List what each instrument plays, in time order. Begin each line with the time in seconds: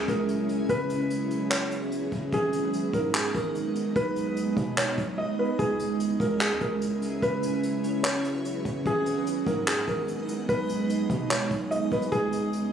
Already playing: ambient pad G#3 C#4 E4, synth texture C#4 G#4 E5
0.08 808-style bass C#2, felt piano A#4, kick, closed hi-hat
0.29 closed hi-hat
0.49 closed hi-hat
0.69 808-style bass F#1, ambient pad F#3 G#4 B4, synth texture B3 F#4, felt piano B4, kick, closed hi-hat
0.90 closed hi-hat
1.10 closed hi-hat
1.31 closed hi-hat
1.50 felt piano C#5, clap, closed hi-hat
1.71 closed hi-hat
1.92 closed hi-hat
2.12 808-style bass F#1, kick, closed hi-hat
2.32 808-style bass G#1, ambient pad G#3 B3 D#4, synth texture G#4 D#5, felt piano G#4, kick, closed hi-hat
2.53 closed hi-hat
2.73 closed hi-hat
2.93 808-style bass G#2, felt piano A#4, kick, closed hi-hat
3.14 felt piano G#4, clap, closed hi-hat
3.34 808-style bass G#1, felt piano A#4, kick, closed hi-hat
3.55 closed hi-hat
3.75 closed hi-hat
3.96 808-style bass B1, ambient pad G#3, synth texture B3, felt piano B4, kick, closed hi-hat
4.16 closed hi-hat
4.37 closed hi-hat
4.57 808-style bass B2, kick, closed hi-hat
4.77 felt piano C#5, clap, closed hi-hat
4.98 808-style bass B1, kick, closed hi-hat
5.18 felt piano D#5
5.39 felt piano B4
5.59 808-style bass C#2, ambient pad C#4 E4, synth texture C#4 E5, felt piano G#4, kick, closed hi-hat
5.79 closed hi-hat
6.00 closed hi-hat
6.20 808-style bass C#2, felt piano A#4, kick, closed hi-hat
6.40 felt piano G#4, clap, closed hi-hat
6.51 808-style bass E2
6.61 808-style bass C#2, felt piano A#4, kick, closed hi-hat
6.82 closed hi-hat
7.02 closed hi-hat
7.22 808-style bass F#1, ambient pad F#3 E4 G#4 B4, synth texture B3 F#4, felt piano B4, kick, closed hi-hat
7.43 closed hi-hat
7.63 closed hi-hat
7.84 closed hi-hat
8.03 felt piano C#5, clap, closed hi-hat
8.24 closed hi-hat
8.45 closed hi-hat
8.65 808-style bass F#1, kick, closed hi-hat
8.86 808-style bass G#1, ambient pad G#3 B3 D#4, synth texture G#4 D#5, felt piano G#4, kick, closed hi-hat
9.06 closed hi-hat
9.27 closed hi-hat
9.47 808-style bass G#2, felt piano A#4, kick, closed hi-hat
9.67 felt piano G#4, clap, closed hi-hat
9.88 808-style bass G#1, felt piano A#4, kick, closed hi-hat
10.08 closed hi-hat
10.28 closed hi-hat
10.49 808-style bass B1, felt piano B4, kick, closed hi-hat
10.69 closed hi-hat
10.90 closed hi-hat
11.10 808-style bass B2, kick, closed hi-hat
11.30 felt piano C#5, clap, closed hi-hat
11.51 808-style bass B1, kick, closed hi-hat
11.71 felt piano D#5, closed hi-hat
11.92 808-style bass B1, felt piano B4, kick, closed hi-hat
12.02 closed hi-hat
12.12 808-style bass C#2, ambient pad G#3 C#4 E4, synth texture C#4 G#4 E5, felt piano G#4, kick, closed hi-hat
12.32 closed hi-hat
12.53 closed hi-hat